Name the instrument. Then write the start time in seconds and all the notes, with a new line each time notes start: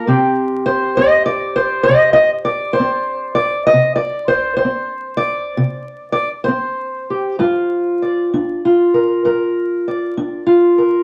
steel-string acoustic guitar
Already playing: A#4
0.07 C3 C4 G4
0.66 C5
0.97 C4 D#5
1.26 D5
1.56 C5
1.83 D#5
1.89 C3
2.13 D#5
2.45 D5
2.73 C5
2.80 C4
3.35 D5
3.67 D#5
3.73 C3
3.96 D5
4.28 C5
4.57 C5
4.65 C4
5.17 D5
5.57 C3
6.12 D5
6.44 C5
6.48 C4
7.10 G4
7.39 G2 F4
8.02 D5
8.34 D4
8.65 F4
8.94 A#4
9.25 G2 A#4
9.88 D5
10.17 D4
10.46 F4
10.78 A#4